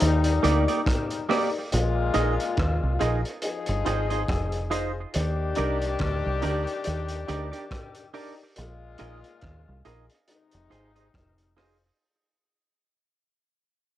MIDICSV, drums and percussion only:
0, 0, Header, 1, 2, 480
1, 0, Start_track
1, 0, Key_signature, -3, "major"
1, 0, Tempo, 855920
1, 965, Time_signature, 4, 2, 24, 8
1, 7839, End_track
2, 0, Start_track
2, 0, Title_t, "Drums"
2, 1, Note_on_c, 9, 42, 95
2, 57, Note_off_c, 9, 42, 0
2, 134, Note_on_c, 9, 42, 66
2, 190, Note_off_c, 9, 42, 0
2, 247, Note_on_c, 9, 42, 78
2, 303, Note_off_c, 9, 42, 0
2, 382, Note_on_c, 9, 42, 47
2, 438, Note_off_c, 9, 42, 0
2, 485, Note_on_c, 9, 36, 113
2, 489, Note_on_c, 9, 37, 114
2, 491, Note_on_c, 9, 42, 107
2, 541, Note_off_c, 9, 36, 0
2, 545, Note_off_c, 9, 37, 0
2, 547, Note_off_c, 9, 42, 0
2, 619, Note_on_c, 9, 42, 54
2, 675, Note_off_c, 9, 42, 0
2, 733, Note_on_c, 9, 46, 51
2, 734, Note_on_c, 9, 37, 62
2, 789, Note_off_c, 9, 46, 0
2, 790, Note_off_c, 9, 37, 0
2, 966, Note_on_c, 9, 42, 99
2, 1022, Note_off_c, 9, 42, 0
2, 1200, Note_on_c, 9, 42, 77
2, 1256, Note_off_c, 9, 42, 0
2, 1346, Note_on_c, 9, 42, 52
2, 1402, Note_off_c, 9, 42, 0
2, 1442, Note_on_c, 9, 42, 78
2, 1445, Note_on_c, 9, 36, 111
2, 1455, Note_on_c, 9, 37, 109
2, 1498, Note_off_c, 9, 42, 0
2, 1501, Note_off_c, 9, 36, 0
2, 1511, Note_off_c, 9, 37, 0
2, 1686, Note_on_c, 9, 42, 77
2, 1742, Note_off_c, 9, 42, 0
2, 1824, Note_on_c, 9, 42, 46
2, 1880, Note_off_c, 9, 42, 0
2, 1918, Note_on_c, 9, 42, 100
2, 1974, Note_off_c, 9, 42, 0
2, 2054, Note_on_c, 9, 42, 61
2, 2110, Note_off_c, 9, 42, 0
2, 2165, Note_on_c, 9, 42, 76
2, 2221, Note_off_c, 9, 42, 0
2, 2302, Note_on_c, 9, 42, 48
2, 2358, Note_off_c, 9, 42, 0
2, 2403, Note_on_c, 9, 36, 118
2, 2407, Note_on_c, 9, 37, 117
2, 2409, Note_on_c, 9, 42, 97
2, 2459, Note_off_c, 9, 36, 0
2, 2463, Note_off_c, 9, 37, 0
2, 2465, Note_off_c, 9, 42, 0
2, 2536, Note_on_c, 9, 42, 53
2, 2592, Note_off_c, 9, 42, 0
2, 2645, Note_on_c, 9, 42, 68
2, 2701, Note_off_c, 9, 42, 0
2, 2882, Note_on_c, 9, 42, 100
2, 2938, Note_off_c, 9, 42, 0
2, 3114, Note_on_c, 9, 42, 74
2, 3170, Note_off_c, 9, 42, 0
2, 3261, Note_on_c, 9, 42, 51
2, 3317, Note_off_c, 9, 42, 0
2, 3358, Note_on_c, 9, 42, 79
2, 3364, Note_on_c, 9, 36, 108
2, 3371, Note_on_c, 9, 37, 106
2, 3414, Note_off_c, 9, 42, 0
2, 3420, Note_off_c, 9, 36, 0
2, 3427, Note_off_c, 9, 37, 0
2, 3601, Note_on_c, 9, 42, 74
2, 3657, Note_off_c, 9, 42, 0
2, 3741, Note_on_c, 9, 42, 50
2, 3797, Note_off_c, 9, 42, 0
2, 3836, Note_on_c, 9, 42, 90
2, 3892, Note_off_c, 9, 42, 0
2, 3973, Note_on_c, 9, 42, 65
2, 4029, Note_off_c, 9, 42, 0
2, 4085, Note_on_c, 9, 42, 79
2, 4141, Note_off_c, 9, 42, 0
2, 4223, Note_on_c, 9, 42, 48
2, 4279, Note_off_c, 9, 42, 0
2, 4324, Note_on_c, 9, 36, 113
2, 4328, Note_on_c, 9, 37, 122
2, 4330, Note_on_c, 9, 42, 105
2, 4380, Note_off_c, 9, 36, 0
2, 4384, Note_off_c, 9, 37, 0
2, 4386, Note_off_c, 9, 42, 0
2, 4457, Note_on_c, 9, 42, 60
2, 4513, Note_off_c, 9, 42, 0
2, 4565, Note_on_c, 9, 46, 49
2, 4621, Note_off_c, 9, 46, 0
2, 4801, Note_on_c, 9, 42, 96
2, 4857, Note_off_c, 9, 42, 0
2, 5036, Note_on_c, 9, 42, 74
2, 5092, Note_off_c, 9, 42, 0
2, 5181, Note_on_c, 9, 42, 52
2, 5237, Note_off_c, 9, 42, 0
2, 5279, Note_on_c, 9, 42, 76
2, 5286, Note_on_c, 9, 36, 105
2, 5292, Note_on_c, 9, 37, 107
2, 5335, Note_off_c, 9, 42, 0
2, 5342, Note_off_c, 9, 36, 0
2, 5348, Note_off_c, 9, 37, 0
2, 5524, Note_on_c, 9, 42, 74
2, 5580, Note_off_c, 9, 42, 0
2, 5663, Note_on_c, 9, 42, 49
2, 5719, Note_off_c, 9, 42, 0
2, 5763, Note_on_c, 9, 42, 92
2, 5819, Note_off_c, 9, 42, 0
2, 5897, Note_on_c, 9, 42, 68
2, 5953, Note_off_c, 9, 42, 0
2, 6012, Note_on_c, 9, 42, 74
2, 6068, Note_off_c, 9, 42, 0
2, 6146, Note_on_c, 9, 42, 50
2, 6202, Note_off_c, 9, 42, 0
2, 6249, Note_on_c, 9, 36, 110
2, 6253, Note_on_c, 9, 37, 104
2, 6255, Note_on_c, 9, 42, 102
2, 6305, Note_off_c, 9, 36, 0
2, 6309, Note_off_c, 9, 37, 0
2, 6311, Note_off_c, 9, 42, 0
2, 6384, Note_on_c, 9, 42, 58
2, 6440, Note_off_c, 9, 42, 0
2, 6493, Note_on_c, 9, 46, 45
2, 6495, Note_on_c, 9, 37, 66
2, 6549, Note_off_c, 9, 46, 0
2, 6551, Note_off_c, 9, 37, 0
2, 7839, End_track
0, 0, End_of_file